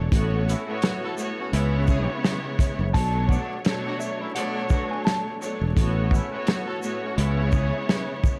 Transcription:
0.00 0.10 C#5 medium
0.11 0.53 A1 loud
0.11 0.62 A2 loud
0.11 0.62 A3 medium
0.11 0.62 B3 medium
0.11 0.63 F#4 medium
0.11 0.63 C#5 loud
0.11 kick loud
0.11 closed hi-hat loud
0.49 0.76 A3 medium
0.49 0.76 C#4 medium
0.49 0.76 E4 loud
0.49 closed hi-hat medium
0.49 shaker medium
0.66 1.14 A2 medium
0.66 1.14 A3 medium
0.66 1.14 B3 medium
0.66 1.15 F#4 medium
0.66 1.15 C#5 loud
0.82 snare loud
0.82 closed hi-hat medium
1.04 1.15 E4 medium
1.04 1.15 F#4 medium
1.04 1.15 A4 medium
1.16 1.52 A2 loud
1.16 1.53 A3 medium
1.16 1.51 B3 medium
1.16 1.53 F#4 medium
1.16 1.52 C#5 loud
1.16 shaker medium
1.38 1.50 A3 medium
1.38 1.50 C#4 medium
1.38 1.50 F#4 medium
1.51 2.06 C#2 loud
1.51 2.83 C#3 loud
1.51 2.84 G#3 medium
1.51 1.81 B3 loud
1.51 2.84 B3 medium
1.51 1.81 C#4 loud
1.51 1.81 E4 loud
1.51 2.84 E4 loud
1.51 2.85 C#5 loud
1.51 closed hi-hat medium
1.88 2.17 C#4 medium
1.88 2.17 E4 medium
1.88 2.17 G#4 loud
1.88 kick medium
1.88 shaker medium
2.24 snare loud
2.24 closed hi-hat medium
2.59 kick loud
2.59 closed hi-hat medium
2.59 shaker medium
2.79 2.90 F#1 medium
2.93 3.36 B1 loud
2.93 3.59 B2 loud
2.93 3.60 F#3 loud
2.93 3.60 A3 medium
2.93 3.60 D4 medium
2.93 3.60 C#5 loud
2.93 3.26 A5 loud
2.93 kick loud
2.93 closed hi-hat loud
3.28 3.57 A3 medium
3.28 3.57 B3 medium
3.28 3.57 D4 loud
3.28 3.61 F#5 medium
3.28 kick loud
3.28 shaker medium
3.64 4.30 B2 loud
3.64 4.30 F#3 medium
3.64 4.31 A3 medium
3.64 4.31 D4 loud
3.64 4.31 C#5 loud
3.64 snare loud
3.64 closed hi-hat medium
3.86 3.97 B3 medium
3.86 3.97 D4 medium
3.86 3.97 F#4 medium
4.00 4.18 E5 medium
4.00 shaker medium
4.19 4.32 A3 medium
4.19 4.32 C#4 medium
4.19 4.32 E4 medium
4.34 5.33 B2 medium
4.34 5.34 F#3 medium
4.34 4.64 A3 loud
4.34 5.34 A3 loud
4.34 4.64 B3 loud
4.34 4.64 D4 loud
4.34 5.34 D4 medium
4.34 5.34 C#5 loud
4.34 4.87 F#5 medium
4.34 closed hi-hat medium
4.70 4.99 B3 medium
4.70 4.99 D4 medium
4.70 4.99 F#4 medium
4.70 kick medium
4.70 shaker medium
4.91 5.04 G#5 medium
5.05 5.37 A5 medium
5.05 snare loud
5.05 closed hi-hat medium
5.40 5.73 B2 medium
5.40 5.74 F#3 medium
5.40 5.74 A3 medium
5.40 5.74 D4 medium
5.40 5.75 C#5 medium
5.40 shaker medium
5.61 5.73 E1 medium
5.76 6.18 A1 loud
5.76 6.27 A2 loud
5.76 6.27 A3 medium
5.76 6.27 B3 medium
5.76 6.27 F#4 medium
5.76 6.28 C#5 loud
5.76 kick loud
5.76 closed hi-hat loud
6.11 6.40 A3 medium
6.11 6.39 C#4 medium
6.11 6.39 E4 medium
6.11 kick loud
6.11 shaker medium
6.31 6.78 A2 medium
6.31 6.79 A3 medium
6.31 6.79 B3 medium
6.31 6.79 F#4 medium
6.31 6.80 C#5 loud
6.47 snare loud
6.47 closed hi-hat medium
6.66 6.79 E4 medium
6.66 6.79 F#4 medium
6.66 6.79 A4 loud
6.81 7.17 A2 loud
6.81 7.17 A3 medium
6.81 7.16 B3 medium
6.81 7.18 F#4 medium
6.81 7.17 C#5 loud
6.81 shaker medium
7.02 7.15 A3 medium
7.02 7.15 C#4 medium
7.02 7.15 F#4 medium
7.16 7.71 C#2 loud
7.16 8.39 C#3 loud
7.16 8.39 G#3 medium
7.16 7.45 B3 loud
7.16 8.39 B3 medium
7.16 7.45 C#4 medium
7.16 7.46 E4 loud
7.16 8.39 E4 loud
7.16 8.39 C#5 loud
7.16 closed hi-hat medium
7.52 7.81 C#4 medium
7.52 7.81 E4 medium
7.52 7.81 G#4 medium
7.52 kick medium
7.52 shaker medium
7.89 snare loud
7.89 closed hi-hat medium
8.24 kick loud
8.24 shaker medium

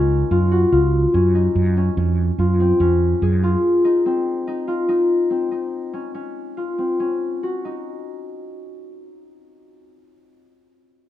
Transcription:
0.00 0.23 C#2 medium
0.00 1.66 A#3 medium
0.00 1.13 C#4 medium
0.00 1.34 D#4 medium
0.00 0.31 F4 medium
0.31 0.64 F#2 medium
0.31 0.58 F4 medium
0.52 0.78 F#4 medium
0.72 1.05 C#2 medium
0.72 2.39 F4 medium
1.14 1.47 F#2 medium
1.14 1.77 C#4 medium
1.35 3.84 D#4 medium
1.55 1.89 F#2 medium
1.77 1.97 C#4 medium
1.97 2.30 F2 medium
1.97 2.66 C#4 medium
2.39 2.72 F#2 medium
2.39 3.43 F4 medium
2.60 2.87 C4 medium
2.80 3.13 F2 medium
2.80 4.12 C#4 medium
3.22 3.55 F#2 medium
3.22 5.50 G#4 medium
3.43 4.67 F4 medium
3.85 4.47 D#4 medium
4.06 5.30 C4 medium
4.47 4.88 D#4 medium
4.68 6.57 F4 medium
4.89 5.51 D#4 medium
5.30 5.99 C4 medium
5.51 7.64 D#4 soft
5.93 6.14 C#4 medium
6.15 6.84 C#4 medium
6.57 7.49 F4 soft
6.78 7.06 C4 soft
7.00 9.89 C#4 medium
7.43 9.87 F#4 soft
7.65 10.35 D#4 medium

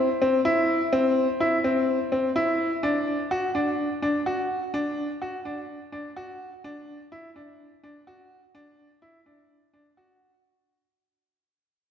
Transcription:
0.22 0.38 C4 medium
0.45 0.78 E4 medium
0.93 1.26 C4 medium
1.40 1.57 E4 medium
1.64 1.97 C4 medium
2.12 2.28 C4 medium
2.36 2.69 E4 medium
2.83 3.16 D4 medium
3.31 3.47 F#4 medium
3.55 3.88 D4 medium
4.02 4.19 D4 medium
4.26 4.59 F#4 medium
4.74 5.07 D4 medium
5.22 5.38 F#4 medium
5.45 5.78 D4 medium
5.92 6.09 D4 medium
6.16 6.49 F#4 medium
6.64 6.97 D4 medium
7.12 7.28 E4 medium
7.36 7.69 D4 medium
7.84 8.00 D4 medium
8.07 8.40 F#4 medium
8.55 8.88 D4 medium
9.02 9.19 E4 medium
9.26 9.59 D4 medium
9.74 9.90 D4 medium
9.97 10.30 F#4 medium

